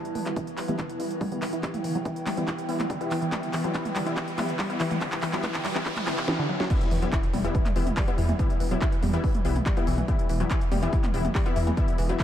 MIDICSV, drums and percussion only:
0, 0, Header, 1, 2, 480
1, 0, Start_track
1, 0, Key_signature, 1, "minor"
1, 0, Tempo, 422535
1, 1854, Time_signature, 4, 2, 24, 8
1, 13901, End_track
2, 0, Start_track
2, 0, Title_t, "Drums"
2, 56, Note_on_c, 9, 42, 55
2, 170, Note_off_c, 9, 42, 0
2, 173, Note_on_c, 9, 45, 61
2, 173, Note_on_c, 9, 46, 101
2, 287, Note_off_c, 9, 45, 0
2, 287, Note_off_c, 9, 46, 0
2, 297, Note_on_c, 9, 39, 43
2, 297, Note_on_c, 9, 42, 54
2, 411, Note_off_c, 9, 39, 0
2, 411, Note_off_c, 9, 42, 0
2, 413, Note_on_c, 9, 36, 116
2, 413, Note_on_c, 9, 42, 78
2, 527, Note_off_c, 9, 36, 0
2, 527, Note_off_c, 9, 42, 0
2, 537, Note_on_c, 9, 42, 54
2, 651, Note_off_c, 9, 42, 0
2, 653, Note_on_c, 9, 39, 52
2, 653, Note_on_c, 9, 46, 104
2, 767, Note_off_c, 9, 39, 0
2, 767, Note_off_c, 9, 46, 0
2, 777, Note_on_c, 9, 42, 55
2, 777, Note_on_c, 9, 45, 65
2, 890, Note_off_c, 9, 42, 0
2, 890, Note_off_c, 9, 45, 0
2, 893, Note_on_c, 9, 36, 111
2, 893, Note_on_c, 9, 39, 51
2, 893, Note_on_c, 9, 42, 64
2, 1006, Note_off_c, 9, 39, 0
2, 1006, Note_off_c, 9, 42, 0
2, 1007, Note_off_c, 9, 36, 0
2, 1016, Note_on_c, 9, 42, 57
2, 1130, Note_off_c, 9, 42, 0
2, 1133, Note_on_c, 9, 46, 100
2, 1247, Note_off_c, 9, 46, 0
2, 1257, Note_on_c, 9, 42, 54
2, 1370, Note_off_c, 9, 42, 0
2, 1373, Note_on_c, 9, 36, 114
2, 1373, Note_on_c, 9, 45, 65
2, 1373, Note_on_c, 9, 46, 64
2, 1487, Note_off_c, 9, 36, 0
2, 1487, Note_off_c, 9, 45, 0
2, 1487, Note_off_c, 9, 46, 0
2, 1496, Note_on_c, 9, 42, 55
2, 1610, Note_off_c, 9, 42, 0
2, 1613, Note_on_c, 9, 39, 59
2, 1613, Note_on_c, 9, 46, 108
2, 1726, Note_off_c, 9, 39, 0
2, 1726, Note_off_c, 9, 46, 0
2, 1736, Note_on_c, 9, 42, 55
2, 1850, Note_off_c, 9, 42, 0
2, 1853, Note_on_c, 9, 36, 115
2, 1853, Note_on_c, 9, 39, 59
2, 1853, Note_on_c, 9, 42, 84
2, 1967, Note_off_c, 9, 36, 0
2, 1967, Note_off_c, 9, 39, 0
2, 1967, Note_off_c, 9, 42, 0
2, 1977, Note_on_c, 9, 42, 55
2, 1977, Note_on_c, 9, 45, 65
2, 2090, Note_off_c, 9, 42, 0
2, 2090, Note_off_c, 9, 45, 0
2, 2093, Note_on_c, 9, 46, 107
2, 2206, Note_off_c, 9, 46, 0
2, 2217, Note_on_c, 9, 42, 53
2, 2330, Note_off_c, 9, 42, 0
2, 2333, Note_on_c, 9, 36, 127
2, 2333, Note_on_c, 9, 42, 81
2, 2446, Note_off_c, 9, 42, 0
2, 2447, Note_off_c, 9, 36, 0
2, 2456, Note_on_c, 9, 42, 56
2, 2570, Note_off_c, 9, 42, 0
2, 2572, Note_on_c, 9, 39, 66
2, 2572, Note_on_c, 9, 45, 63
2, 2572, Note_on_c, 9, 46, 109
2, 2686, Note_off_c, 9, 39, 0
2, 2686, Note_off_c, 9, 45, 0
2, 2686, Note_off_c, 9, 46, 0
2, 2696, Note_on_c, 9, 42, 59
2, 2810, Note_off_c, 9, 42, 0
2, 2812, Note_on_c, 9, 39, 69
2, 2812, Note_on_c, 9, 42, 65
2, 2813, Note_on_c, 9, 36, 121
2, 2926, Note_off_c, 9, 39, 0
2, 2926, Note_off_c, 9, 42, 0
2, 2927, Note_off_c, 9, 36, 0
2, 2936, Note_on_c, 9, 42, 56
2, 3050, Note_off_c, 9, 42, 0
2, 3053, Note_on_c, 9, 46, 103
2, 3166, Note_off_c, 9, 46, 0
2, 3177, Note_on_c, 9, 39, 59
2, 3177, Note_on_c, 9, 42, 54
2, 3177, Note_on_c, 9, 45, 64
2, 3290, Note_off_c, 9, 39, 0
2, 3290, Note_off_c, 9, 42, 0
2, 3290, Note_off_c, 9, 45, 0
2, 3293, Note_on_c, 9, 36, 121
2, 3293, Note_on_c, 9, 42, 84
2, 3407, Note_off_c, 9, 36, 0
2, 3407, Note_off_c, 9, 42, 0
2, 3417, Note_on_c, 9, 42, 53
2, 3531, Note_off_c, 9, 42, 0
2, 3533, Note_on_c, 9, 39, 73
2, 3533, Note_on_c, 9, 46, 109
2, 3647, Note_off_c, 9, 39, 0
2, 3647, Note_off_c, 9, 46, 0
2, 3657, Note_on_c, 9, 42, 56
2, 3771, Note_off_c, 9, 42, 0
2, 3773, Note_on_c, 9, 36, 123
2, 3773, Note_on_c, 9, 39, 75
2, 3773, Note_on_c, 9, 42, 82
2, 3773, Note_on_c, 9, 45, 66
2, 3887, Note_off_c, 9, 36, 0
2, 3887, Note_off_c, 9, 39, 0
2, 3887, Note_off_c, 9, 42, 0
2, 3887, Note_off_c, 9, 45, 0
2, 3897, Note_on_c, 9, 42, 53
2, 4011, Note_off_c, 9, 42, 0
2, 4013, Note_on_c, 9, 39, 77
2, 4013, Note_on_c, 9, 46, 113
2, 4127, Note_off_c, 9, 39, 0
2, 4127, Note_off_c, 9, 46, 0
2, 4137, Note_on_c, 9, 42, 53
2, 4251, Note_off_c, 9, 42, 0
2, 4253, Note_on_c, 9, 36, 127
2, 4253, Note_on_c, 9, 39, 76
2, 4253, Note_on_c, 9, 42, 81
2, 4367, Note_off_c, 9, 36, 0
2, 4367, Note_off_c, 9, 39, 0
2, 4367, Note_off_c, 9, 42, 0
2, 4377, Note_on_c, 9, 42, 55
2, 4377, Note_on_c, 9, 45, 65
2, 4491, Note_off_c, 9, 42, 0
2, 4491, Note_off_c, 9, 45, 0
2, 4494, Note_on_c, 9, 39, 82
2, 4494, Note_on_c, 9, 46, 112
2, 4608, Note_off_c, 9, 39, 0
2, 4608, Note_off_c, 9, 46, 0
2, 4618, Note_on_c, 9, 42, 57
2, 4732, Note_off_c, 9, 42, 0
2, 4733, Note_on_c, 9, 36, 124
2, 4735, Note_on_c, 9, 39, 85
2, 4735, Note_on_c, 9, 42, 61
2, 4847, Note_off_c, 9, 36, 0
2, 4848, Note_off_c, 9, 39, 0
2, 4848, Note_off_c, 9, 42, 0
2, 4858, Note_on_c, 9, 42, 56
2, 4972, Note_off_c, 9, 42, 0
2, 4974, Note_on_c, 9, 39, 83
2, 4974, Note_on_c, 9, 45, 62
2, 4974, Note_on_c, 9, 46, 114
2, 5088, Note_off_c, 9, 39, 0
2, 5088, Note_off_c, 9, 45, 0
2, 5088, Note_off_c, 9, 46, 0
2, 5098, Note_on_c, 9, 42, 56
2, 5212, Note_off_c, 9, 42, 0
2, 5213, Note_on_c, 9, 36, 127
2, 5214, Note_on_c, 9, 39, 89
2, 5214, Note_on_c, 9, 46, 65
2, 5327, Note_off_c, 9, 36, 0
2, 5328, Note_off_c, 9, 39, 0
2, 5328, Note_off_c, 9, 46, 0
2, 5337, Note_on_c, 9, 42, 53
2, 5451, Note_off_c, 9, 42, 0
2, 5453, Note_on_c, 9, 39, 93
2, 5453, Note_on_c, 9, 46, 115
2, 5567, Note_off_c, 9, 39, 0
2, 5567, Note_off_c, 9, 46, 0
2, 5577, Note_on_c, 9, 42, 56
2, 5577, Note_on_c, 9, 45, 66
2, 5691, Note_off_c, 9, 42, 0
2, 5691, Note_off_c, 9, 45, 0
2, 5693, Note_on_c, 9, 36, 126
2, 5694, Note_on_c, 9, 39, 90
2, 5694, Note_on_c, 9, 42, 82
2, 5807, Note_off_c, 9, 36, 0
2, 5807, Note_off_c, 9, 39, 0
2, 5807, Note_off_c, 9, 42, 0
2, 5817, Note_on_c, 9, 39, 86
2, 5817, Note_on_c, 9, 42, 55
2, 5931, Note_off_c, 9, 39, 0
2, 5931, Note_off_c, 9, 42, 0
2, 5933, Note_on_c, 9, 39, 98
2, 5933, Note_on_c, 9, 46, 113
2, 6047, Note_off_c, 9, 39, 0
2, 6047, Note_off_c, 9, 46, 0
2, 6057, Note_on_c, 9, 39, 84
2, 6057, Note_on_c, 9, 42, 51
2, 6171, Note_off_c, 9, 39, 0
2, 6171, Note_off_c, 9, 42, 0
2, 6173, Note_on_c, 9, 36, 127
2, 6173, Note_on_c, 9, 39, 94
2, 6173, Note_on_c, 9, 42, 78
2, 6173, Note_on_c, 9, 45, 67
2, 6287, Note_off_c, 9, 36, 0
2, 6287, Note_off_c, 9, 39, 0
2, 6287, Note_off_c, 9, 42, 0
2, 6287, Note_off_c, 9, 45, 0
2, 6297, Note_on_c, 9, 39, 87
2, 6297, Note_on_c, 9, 42, 55
2, 6410, Note_off_c, 9, 39, 0
2, 6410, Note_off_c, 9, 42, 0
2, 6413, Note_on_c, 9, 39, 101
2, 6413, Note_on_c, 9, 46, 112
2, 6527, Note_off_c, 9, 39, 0
2, 6527, Note_off_c, 9, 46, 0
2, 6536, Note_on_c, 9, 39, 92
2, 6536, Note_on_c, 9, 42, 55
2, 6650, Note_off_c, 9, 39, 0
2, 6650, Note_off_c, 9, 42, 0
2, 6653, Note_on_c, 9, 36, 126
2, 6653, Note_on_c, 9, 39, 107
2, 6653, Note_on_c, 9, 42, 62
2, 6766, Note_off_c, 9, 39, 0
2, 6766, Note_off_c, 9, 42, 0
2, 6767, Note_off_c, 9, 36, 0
2, 6777, Note_on_c, 9, 39, 91
2, 6777, Note_on_c, 9, 42, 54
2, 6777, Note_on_c, 9, 45, 68
2, 6890, Note_off_c, 9, 39, 0
2, 6890, Note_off_c, 9, 42, 0
2, 6890, Note_off_c, 9, 45, 0
2, 6892, Note_on_c, 9, 39, 105
2, 6892, Note_on_c, 9, 46, 114
2, 7006, Note_off_c, 9, 39, 0
2, 7006, Note_off_c, 9, 46, 0
2, 7017, Note_on_c, 9, 39, 93
2, 7017, Note_on_c, 9, 42, 52
2, 7130, Note_off_c, 9, 39, 0
2, 7130, Note_off_c, 9, 42, 0
2, 7133, Note_on_c, 9, 38, 114
2, 7246, Note_off_c, 9, 38, 0
2, 7497, Note_on_c, 9, 38, 83
2, 7610, Note_off_c, 9, 38, 0
2, 7613, Note_on_c, 9, 36, 119
2, 7613, Note_on_c, 9, 42, 85
2, 7613, Note_on_c, 9, 49, 106
2, 7727, Note_off_c, 9, 36, 0
2, 7727, Note_off_c, 9, 42, 0
2, 7727, Note_off_c, 9, 49, 0
2, 7737, Note_on_c, 9, 42, 56
2, 7851, Note_off_c, 9, 42, 0
2, 7853, Note_on_c, 9, 46, 109
2, 7967, Note_off_c, 9, 46, 0
2, 7977, Note_on_c, 9, 42, 55
2, 8091, Note_off_c, 9, 42, 0
2, 8093, Note_on_c, 9, 39, 118
2, 8093, Note_on_c, 9, 42, 83
2, 8094, Note_on_c, 9, 36, 125
2, 8207, Note_off_c, 9, 36, 0
2, 8207, Note_off_c, 9, 39, 0
2, 8207, Note_off_c, 9, 42, 0
2, 8217, Note_on_c, 9, 42, 58
2, 8331, Note_off_c, 9, 42, 0
2, 8333, Note_on_c, 9, 45, 92
2, 8333, Note_on_c, 9, 46, 110
2, 8447, Note_off_c, 9, 45, 0
2, 8447, Note_off_c, 9, 46, 0
2, 8457, Note_on_c, 9, 42, 58
2, 8571, Note_off_c, 9, 42, 0
2, 8573, Note_on_c, 9, 42, 64
2, 8574, Note_on_c, 9, 36, 121
2, 8687, Note_off_c, 9, 36, 0
2, 8687, Note_off_c, 9, 42, 0
2, 8697, Note_on_c, 9, 39, 41
2, 8697, Note_on_c, 9, 42, 57
2, 8697, Note_on_c, 9, 45, 82
2, 8810, Note_off_c, 9, 39, 0
2, 8810, Note_off_c, 9, 42, 0
2, 8810, Note_off_c, 9, 45, 0
2, 8813, Note_on_c, 9, 46, 103
2, 8927, Note_off_c, 9, 46, 0
2, 8937, Note_on_c, 9, 42, 56
2, 8937, Note_on_c, 9, 45, 89
2, 9050, Note_off_c, 9, 42, 0
2, 9050, Note_off_c, 9, 45, 0
2, 9053, Note_on_c, 9, 36, 117
2, 9053, Note_on_c, 9, 39, 127
2, 9053, Note_on_c, 9, 46, 63
2, 9166, Note_off_c, 9, 39, 0
2, 9166, Note_off_c, 9, 46, 0
2, 9167, Note_off_c, 9, 36, 0
2, 9176, Note_on_c, 9, 42, 56
2, 9290, Note_off_c, 9, 42, 0
2, 9293, Note_on_c, 9, 46, 112
2, 9406, Note_off_c, 9, 46, 0
2, 9417, Note_on_c, 9, 42, 57
2, 9417, Note_on_c, 9, 45, 84
2, 9530, Note_off_c, 9, 42, 0
2, 9530, Note_off_c, 9, 45, 0
2, 9533, Note_on_c, 9, 36, 118
2, 9533, Note_on_c, 9, 42, 83
2, 9647, Note_off_c, 9, 36, 0
2, 9647, Note_off_c, 9, 42, 0
2, 9657, Note_on_c, 9, 42, 55
2, 9771, Note_off_c, 9, 42, 0
2, 9773, Note_on_c, 9, 46, 118
2, 9887, Note_off_c, 9, 46, 0
2, 9897, Note_on_c, 9, 42, 56
2, 10010, Note_off_c, 9, 42, 0
2, 10013, Note_on_c, 9, 36, 127
2, 10013, Note_on_c, 9, 39, 120
2, 10013, Note_on_c, 9, 42, 81
2, 10126, Note_off_c, 9, 39, 0
2, 10126, Note_off_c, 9, 42, 0
2, 10127, Note_off_c, 9, 36, 0
2, 10137, Note_on_c, 9, 42, 57
2, 10251, Note_off_c, 9, 42, 0
2, 10253, Note_on_c, 9, 45, 90
2, 10253, Note_on_c, 9, 46, 109
2, 10367, Note_off_c, 9, 45, 0
2, 10367, Note_off_c, 9, 46, 0
2, 10377, Note_on_c, 9, 42, 59
2, 10491, Note_off_c, 9, 42, 0
2, 10493, Note_on_c, 9, 36, 122
2, 10494, Note_on_c, 9, 46, 64
2, 10607, Note_off_c, 9, 36, 0
2, 10607, Note_off_c, 9, 46, 0
2, 10617, Note_on_c, 9, 42, 56
2, 10617, Note_on_c, 9, 45, 81
2, 10731, Note_off_c, 9, 42, 0
2, 10731, Note_off_c, 9, 45, 0
2, 10733, Note_on_c, 9, 46, 108
2, 10847, Note_off_c, 9, 46, 0
2, 10857, Note_on_c, 9, 42, 56
2, 10857, Note_on_c, 9, 45, 91
2, 10971, Note_off_c, 9, 42, 0
2, 10971, Note_off_c, 9, 45, 0
2, 10973, Note_on_c, 9, 36, 126
2, 10974, Note_on_c, 9, 39, 122
2, 10974, Note_on_c, 9, 42, 89
2, 11087, Note_off_c, 9, 36, 0
2, 11087, Note_off_c, 9, 39, 0
2, 11087, Note_off_c, 9, 42, 0
2, 11097, Note_on_c, 9, 42, 55
2, 11211, Note_off_c, 9, 42, 0
2, 11213, Note_on_c, 9, 46, 114
2, 11327, Note_off_c, 9, 46, 0
2, 11337, Note_on_c, 9, 42, 56
2, 11337, Note_on_c, 9, 45, 83
2, 11451, Note_off_c, 9, 42, 0
2, 11451, Note_off_c, 9, 45, 0
2, 11453, Note_on_c, 9, 36, 120
2, 11453, Note_on_c, 9, 42, 85
2, 11567, Note_off_c, 9, 36, 0
2, 11567, Note_off_c, 9, 42, 0
2, 11577, Note_on_c, 9, 42, 58
2, 11691, Note_off_c, 9, 42, 0
2, 11694, Note_on_c, 9, 46, 111
2, 11807, Note_off_c, 9, 46, 0
2, 11817, Note_on_c, 9, 42, 55
2, 11931, Note_off_c, 9, 42, 0
2, 11933, Note_on_c, 9, 36, 127
2, 11933, Note_on_c, 9, 39, 113
2, 11933, Note_on_c, 9, 42, 83
2, 12047, Note_off_c, 9, 36, 0
2, 12047, Note_off_c, 9, 39, 0
2, 12047, Note_off_c, 9, 42, 0
2, 12057, Note_on_c, 9, 42, 57
2, 12170, Note_off_c, 9, 42, 0
2, 12173, Note_on_c, 9, 45, 97
2, 12173, Note_on_c, 9, 46, 116
2, 12287, Note_off_c, 9, 45, 0
2, 12287, Note_off_c, 9, 46, 0
2, 12297, Note_on_c, 9, 42, 57
2, 12410, Note_off_c, 9, 42, 0
2, 12413, Note_on_c, 9, 36, 126
2, 12413, Note_on_c, 9, 42, 66
2, 12527, Note_off_c, 9, 36, 0
2, 12527, Note_off_c, 9, 42, 0
2, 12537, Note_on_c, 9, 39, 37
2, 12537, Note_on_c, 9, 42, 55
2, 12537, Note_on_c, 9, 45, 85
2, 12651, Note_off_c, 9, 39, 0
2, 12651, Note_off_c, 9, 42, 0
2, 12651, Note_off_c, 9, 45, 0
2, 12654, Note_on_c, 9, 46, 110
2, 12767, Note_off_c, 9, 46, 0
2, 12777, Note_on_c, 9, 42, 57
2, 12777, Note_on_c, 9, 45, 93
2, 12891, Note_off_c, 9, 42, 0
2, 12891, Note_off_c, 9, 45, 0
2, 12893, Note_on_c, 9, 36, 127
2, 12893, Note_on_c, 9, 39, 121
2, 12893, Note_on_c, 9, 46, 67
2, 13007, Note_off_c, 9, 36, 0
2, 13007, Note_off_c, 9, 39, 0
2, 13007, Note_off_c, 9, 46, 0
2, 13017, Note_on_c, 9, 42, 55
2, 13131, Note_off_c, 9, 42, 0
2, 13133, Note_on_c, 9, 46, 116
2, 13247, Note_off_c, 9, 46, 0
2, 13257, Note_on_c, 9, 42, 56
2, 13257, Note_on_c, 9, 45, 84
2, 13371, Note_off_c, 9, 42, 0
2, 13371, Note_off_c, 9, 45, 0
2, 13373, Note_on_c, 9, 36, 123
2, 13373, Note_on_c, 9, 42, 82
2, 13487, Note_off_c, 9, 36, 0
2, 13487, Note_off_c, 9, 42, 0
2, 13496, Note_on_c, 9, 42, 55
2, 13610, Note_off_c, 9, 42, 0
2, 13613, Note_on_c, 9, 46, 113
2, 13727, Note_off_c, 9, 46, 0
2, 13737, Note_on_c, 9, 42, 52
2, 13851, Note_off_c, 9, 42, 0
2, 13853, Note_on_c, 9, 36, 127
2, 13853, Note_on_c, 9, 39, 117
2, 13853, Note_on_c, 9, 42, 76
2, 13901, Note_off_c, 9, 36, 0
2, 13901, Note_off_c, 9, 39, 0
2, 13901, Note_off_c, 9, 42, 0
2, 13901, End_track
0, 0, End_of_file